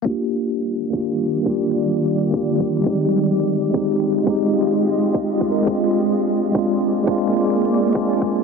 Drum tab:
BD |o---------o-----|o---------o--o--|o---------o-----|o---------o--o--|

BD |o---------o-----|o---------o--o--|